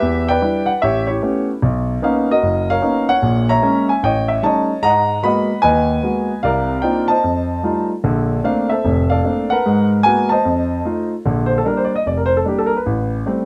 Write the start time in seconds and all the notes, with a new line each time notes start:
Already playing: G4 B4 E5
0.02 E2
0.28 B4 D5 G5
0.42 G3 D4 E4
0.66 F#5
0.82 A1 G4 C#5 E5
1.07 E4 G4 C#5
1.22 A3 B3 C#4 G4
1.62 B1
2.02 A#3 B3 C#4 D#4 F5
2.31 F#4 A#4 D#5
2.43 F#1
2.70 A#4 C#5 F5
2.82 A#3 B3 C#4 D#4
3.09 C#5 F#5
3.22 A#1 A#2
3.49 C#5 E5 A#5
3.62 G#3 A#3 C#4
3.89 G#5
4.03 A1 C#5 D#5 G5
4.28 E5
4.42 G3 A3 C#4 D#4 C#5 D#5 A5
4.82 G#2 G#3 D#5 F#5 A#5
5.23 G#3 A#3 B3 F#4 D#5 F#5 B5
5.62 D#2 D#3 B4 D#5 G#5
6.03 G#3 A#3 B3 F#4
6.43 C2 C3 A#4 D5 F5
6.82 A#3 C4 D4 D#4 F4 G5
7.08 C5 D#5 A5
7.24 F2
7.63 G3 A3 D#4 F4
8.04 A#1 D3
8.44 A3 A#3 C4 D4 F5
8.69 A4 C5 E5
8.84 F1 A2
9.10 A4 D5 F5
9.24 A3 A#3 C4 D4
9.50 A#4 B4 F#5
9.66 G#2 G#3
10.03 G#3 A#3 B3 F#4 G#5
10.29 C5 D#5 A5
10.45 F2
10.85 A3 D#4 F4
11.25 A#1 D3
11.46 C5
11.58 A4
11.65 G3 A#3 D4 A#4
11.77 C5
11.85 D5
11.96 D#5
12.06 F1 D5
12.17 A#4
12.26 C5
12.37 A4
12.45 G3 A#3 D4 G4
12.59 A4
12.66 A#4
12.77 B4
12.86 A1
13.26 G3 A3 C4